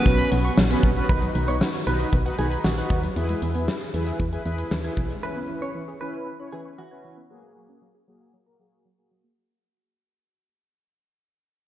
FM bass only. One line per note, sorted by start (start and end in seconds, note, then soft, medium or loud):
0.06 0.24 B1 loud
0.32 0.50 B1 loud
0.58 0.76 A#1 loud
0.83 1.01 A#1 medium
1.09 1.27 B1 loud
1.35 1.62 B1 loud
1.87 2.05 B1 loud
2.13 2.31 B1 loud
2.39 2.57 B1 loud
2.65 2.83 A#1 medium
2.90 3.08 D#2 medium
3.16 3.34 E2 loud
3.42 3.69 E2 loud
3.94 4.12 E2 medium
4.20 4.38 E2 medium
4.46 4.64 E2 loud
4.71 4.90 D#2 medium
4.97 5.15 B1 medium